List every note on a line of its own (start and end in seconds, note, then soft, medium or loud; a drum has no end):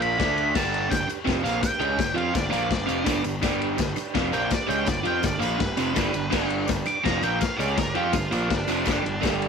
0.00 0.17 A#1 medium
0.00 0.18 A#2 loud
0.00 0.19 F3 loud
0.00 0.19 A#3 loud
0.00 0.12 F4 medium
0.00 0.12 A#4 medium
0.00 0.12 F5 medium
0.00 0.53 B5 medium
0.00 ride medium
0.18 0.52 D2 medium
0.18 0.54 D3 medium
0.18 0.54 A3 medium
0.18 0.49 D4 medium
0.18 0.55 D4 loud
0.18 0.49 A4 medium
0.18 0.49 D5 medium
0.18 kick loud
0.18 snare loud
0.18 ride loud
0.38 ride medium
0.52 0.88 G1 medium
0.52 0.88 G2 loud
0.52 0.89 D3 loud
0.52 0.90 G3 loud
0.52 0.83 D4 medium
0.52 0.84 G4 medium
0.52 0.84 B4 medium
0.52 0.90 A5 medium
0.52 kick loud
0.52 snare loud
0.52 crash loud
0.57 tambourine medium
0.74 ride medium
0.87 1.04 G2 medium
0.87 1.04 D3 medium
0.87 1.19 D4 medium
0.87 1.20 G4 medium
0.87 1.20 B4 medium
0.87 1.08 G5 loud
0.91 1.08 G1 medium
0.91 kick loud
0.91 snare loud
0.91 ride loud
0.91 tambourine medium
1.08 muted overdriven electric guitar stroke medium
1.08 muted picked electric bass stroke soft
1.08 ride medium
1.08 tambourine medium
1.23 1.43 F2 loud
1.23 1.42 C3 loud
1.23 1.42 F3 loud
1.23 1.55 D4 medium
1.23 1.55 G4 medium
1.23 1.56 B4 loud
1.27 1.43 F1 medium
1.27 kick loud
1.27 snare loud
1.27 ride loud
1.43 1.61 A#1 medium
1.43 1.61 A#2 medium
1.43 1.61 F3 loud
1.43 1.61 A#3 loud
1.43 1.62 F5 loud
1.43 ride medium
1.43 tambourine medium
1.60 1.91 D4 medium
1.60 1.92 G4 medium
1.60 1.92 B4 medium
1.60 2.15 G5 loud
1.60 muted overdriven electric guitar stroke medium
1.60 muted picked electric bass stroke soft
1.60 kick loud
1.60 snare loud
1.60 ride loud
1.60 tambourine loud
1.79 1.97 C#2 loud
1.79 1.96 C#3 medium
1.79 1.97 G#3 medium
1.79 1.98 C#4 loud
1.79 ride medium
1.96 2.14 G1 medium
1.96 2.12 G2 medium
1.96 2.12 D3 medium
1.96 2.28 D4 medium
1.96 2.28 G4 medium
1.96 2.29 B4 medium
1.96 kick loud
1.96 snare loud
1.96 ride loud
2.01 tambourine medium
2.14 2.32 F2 loud
2.14 2.33 F3 loud
2.14 2.33 C4 loud
2.14 2.33 F4 loud
2.14 2.34 F5 loud
2.14 ride medium
2.33 2.51 G1 medium
2.33 2.48 G2 medium
2.33 2.48 D3 medium
2.33 2.65 D4 medium
2.33 2.65 G4 medium
2.33 2.65 B4 medium
2.33 2.50 D5 medium
2.33 kick loud
2.33 snare loud
2.33 ride loud
2.33 tambourine loud
2.50 2.69 A#1 loud
2.50 2.68 A#2 medium
2.50 2.69 F3 loud
2.50 2.70 A#3 loud
2.50 3.22 D5 loud
2.50 ride medium
2.50 tambourine medium
2.68 2.87 G1 medium
2.68 2.84 G2 medium
2.68 2.84 D3 medium
2.68 3.00 D4 medium
2.68 3.01 G4 medium
2.68 3.01 B4 medium
2.68 kick loud
2.68 snare loud
2.68 ride loud
2.86 3.05 F1 loud
2.86 3.04 F2 medium
2.86 3.04 C3 loud
2.86 3.04 F3 loud
2.86 ride medium
2.86 tambourine medium
3.03 3.23 G1 loud
3.03 3.22 G2 medium
3.03 3.22 D3 loud
3.03 3.23 G3 loud
3.03 3.35 D4 loud
3.03 3.36 G4 medium
3.03 3.36 B4 loud
3.03 kick loud
3.03 snare loud
3.03 ride loud
3.03 tambourine loud
3.23 3.42 G1 medium
3.23 3.38 G2 medium
3.23 3.39 D3 medium
3.23 ride medium
3.23 tambourine medium
3.41 3.76 G1 medium
3.41 3.76 G2 loud
3.41 3.76 D3 loud
3.41 3.78 G3 loud
3.41 3.72 D4 medium
3.41 3.72 G4 medium
3.41 3.72 B4 medium
3.41 kick loud
3.41 snare loud
3.41 ride loud
3.41 tambourine medium
3.61 ride medium
3.76 3.92 G2 medium
3.76 3.93 D3 medium
3.76 4.08 D4 medium
3.76 4.08 G4 medium
3.76 4.08 B4 loud
3.76 kick loud
3.76 ride loud
3.76 tambourine loud
3.80 3.96 G1 medium
3.80 snare loud
3.96 muted overdriven electric guitar stroke medium
3.96 muted picked electric bass stroke soft
3.96 ride medium
3.96 tambourine medium
4.09 4.43 D4 medium
4.09 4.43 G4 medium
4.09 4.43 B4 loud
4.14 4.32 F1 medium
4.14 4.32 F2 loud
4.14 4.32 C3 loud
4.14 4.31 F3 loud
4.14 kick loud
4.14 snare loud
4.14 ride medium
4.32 4.50 A#1 medium
4.32 4.50 A#2 medium
4.32 4.50 F3 loud
4.32 4.51 A#3 loud
4.32 4.51 G5 loud
4.32 ride medium
4.32 tambourine medium
4.49 4.81 D4 medium
4.49 4.81 G4 medium
4.49 4.81 B4 medium
4.49 4.69 D5 medium
4.49 muted overdriven electric guitar stroke medium
4.49 muted picked electric bass stroke soft
4.49 kick loud
4.49 snare loud
4.49 ride medium
4.49 tambourine loud
4.67 4.86 C#2 medium
4.67 4.85 C#3 medium
4.67 4.86 G#3 loud
4.67 4.87 C#4 loud
4.67 4.87 G5 loud
4.67 ride medium
4.67 tambourine medium
4.82 5.01 G2 medium
4.82 5.01 D3 medium
4.82 5.15 D4 medium
4.82 5.16 G4 medium
4.82 5.16 B4 medium
4.86 5.04 G1 medium
4.86 5.06 D5 loud
4.86 kick loud
4.86 snare loud
4.86 ride medium
4.86 tambourine medium
5.04 5.22 F2 medium
5.04 5.22 F3 medium
5.04 5.23 C4 medium
5.04 5.23 F4 medium
5.04 5.24 G5 loud
5.04 ride medium
5.04 tambourine soft
5.20 5.41 G1 medium
5.20 5.38 G2 medium
5.20 5.38 D3 medium
5.20 5.53 D4 medium
5.20 5.54 G4 medium
5.20 5.54 A4 medium
5.20 kick loud
5.20 snare loud
5.20 ride loud
5.20 tambourine medium
5.25 5.43 D5 loud
5.39 5.59 A#1 medium
5.39 5.58 A#2 medium
5.39 5.59 F3 loud
5.39 5.59 A#3 loud
5.39 6.48 B4 loud
5.39 ride medium
5.39 tambourine medium
5.57 5.74 G2 medium
5.57 5.74 D3 medium
5.57 5.89 D4 medium
5.57 5.89 G4 medium
5.57 5.90 B4 medium
5.57 kick loud
5.57 snare loud
5.57 ride medium
5.57 tambourine soft
5.61 5.77 G1 medium
5.77 5.95 F1 medium
5.77 5.94 F2 medium
5.77 5.95 C3 medium
5.77 5.94 F3 loud
5.77 ride medium
5.77 tambourine medium
5.93 6.14 G1 medium
5.93 6.11 G2 medium
5.93 6.11 D3 medium
5.93 6.13 G3 loud
5.93 6.26 D4 medium
5.93 6.26 G4 medium
5.93 6.26 B4 loud
5.93 kick loud
5.93 snare loud
5.93 ride loud
5.93 tambourine loud
6.12 6.32 G1 medium
6.12 6.28 G2 medium
6.12 6.28 D3 medium
6.12 ride medium
6.12 tambourine medium
6.30 6.67 G1 medium
6.30 6.66 G2 loud
6.30 6.67 D3 loud
6.30 6.68 G3 loud
6.30 6.63 D4 medium
6.30 6.62 G4 medium
6.30 6.63 B4 medium
6.30 kick loud
6.30 snare loud
6.30 tambourine medium
6.30 crash loud
6.50 ride medium
6.67 6.86 G1 medium
6.67 6.83 G2 medium
6.67 6.83 D3 medium
6.67 6.99 D4 medium
6.67 6.99 G4 medium
6.67 6.99 B4 loud
6.67 kick loud
6.67 snare loud
6.67 ride loud
6.67 tambourine medium
6.86 7.04 D6 loud
6.86 muted overdriven electric guitar stroke medium
6.86 muted picked electric bass stroke soft
6.86 ride medium
6.86 tambourine medium
7.04 7.22 F1 medium
7.04 7.22 F2 loud
7.04 7.21 C3 medium
7.04 7.21 F3 loud
7.04 7.36 D4 medium
7.04 7.37 G4 medium
7.04 7.37 B4 medium
7.04 7.23 A#5 loud
7.04 kick loud
7.04 snare loud
7.04 ride loud
7.21 7.40 A#1 medium
7.21 7.40 A#2 medium
7.21 7.41 F3 medium
7.21 7.41 A#3 medium
7.21 7.40 G5 medium
7.21 ride medium
7.21 tambourine medium
7.41 7.72 D4 medium
7.41 7.72 G4 medium
7.41 7.73 B4 medium
7.41 7.59 F5 medium
7.41 muted overdriven electric guitar stroke medium
7.41 muted picked electric bass stroke soft
7.41 kick loud
7.41 snare loud
7.41 ride loud
7.41 tambourine medium
7.57 7.76 C#2 loud
7.57 7.76 C#3 medium
7.57 7.78 G#3 loud
7.57 7.78 C#4 loud
7.57 7.76 D5 loud
7.57 ride medium
7.57 tambourine medium
7.76 7.95 G1 medium
7.76 7.92 G2 medium
7.76 7.92 D3 medium
7.76 8.08 D4 medium
7.76 8.08 G4 medium
7.76 7.95 A#4 loud
7.76 8.09 D5 medium
7.76 kick loud
7.76 snare loud
7.76 ride loud
7.76 tambourine medium
7.95 8.13 F2 medium
7.95 8.13 F3 medium
7.95 8.14 C4 medium
7.95 8.14 F4 loud
7.95 8.14 G4 medium
7.95 ride medium
8.11 8.31 G1 medium
8.11 8.28 G2 medium
8.11 8.28 D3 medium
8.11 8.43 D4 medium
8.11 8.32 F4 loud
8.11 8.44 G4 medium
8.11 8.44 B4 medium
8.11 kick loud
8.11 snare loud
8.11 ride loud
8.11 tambourine medium
8.31 8.49 A#1 medium
8.31 8.49 A#2 medium
8.31 8.50 F3 loud
8.31 8.51 A#3 loud
8.31 8.49 D4 medium
8.31 ride medium
8.31 tambourine medium
8.47 8.64 G2 medium
8.47 8.65 D3 medium
8.47 8.79 D4 medium
8.47 9.21 D4 loud
8.47 8.79 G4 medium
8.47 8.79 B4 medium
8.47 kick loud
8.51 8.68 G1 medium
8.51 snare loud
8.51 ride medium
8.68 8.86 F1 medium
8.68 8.84 F2 medium
8.68 8.85 C3 medium
8.68 8.85 F3 loud
8.68 ride medium
8.68 tambourine medium
8.84 9.04 G1 loud
8.84 9.02 G2 medium
8.84 9.03 D3 loud
8.84 9.04 G3 loud
8.84 9.16 D4 medium
8.84 9.16 G4 medium
8.84 9.16 B4 medium
8.84 kick loud
8.84 ride loud
8.84 tambourine medium
8.88 snare loud
9.04 9.22 G1 medium
9.04 9.19 G2 medium
9.04 9.19 D3 medium
9.04 ride medium
9.20 9.48 G1 loud
9.20 9.48 G2 loud
9.20 9.48 D3 loud
9.20 9.48 G3 loud
9.20 9.48 D4 medium
9.20 9.48 G4 medium
9.20 9.48 A4 medium
9.20 kick loud
9.20 tambourine medium
9.25 snare loud
9.25 ride loud
9.42 ride medium